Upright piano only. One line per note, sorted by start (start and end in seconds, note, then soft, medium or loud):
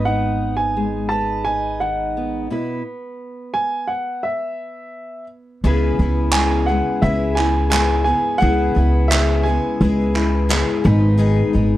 0.05 0.54 F#5 medium
0.57 1.06 G#5 medium
1.09 1.46 A5 medium
1.45 1.81 G#5 medium
1.80 2.46 F#5 medium
3.54 3.90 G#5 medium
3.87 4.24 F#5 medium
4.23 5.24 E5 medium
6.32 6.68 G#5 medium
6.66 7.03 F#5 medium
7.02 7.38 E5 medium
7.35 7.69 G#5 medium
7.70 8.03 G#5 medium
8.04 8.41 G#5 medium
8.38 9.11 F#5 loud
9.08 9.45 E5 medium
9.43 10.80 G#5 medium